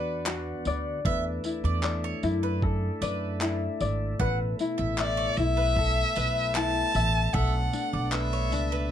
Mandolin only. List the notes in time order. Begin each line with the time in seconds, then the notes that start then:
Already playing: B4
1.05 E5
1.65 D5
2.04 C#5
2.43 B4
3.02 B4
4.20 F#5
4.78 E5
5.17 C#5
5.57 B4
6.16 B4
7.34 E5
7.93 D5
8.33 C#5
8.72 B4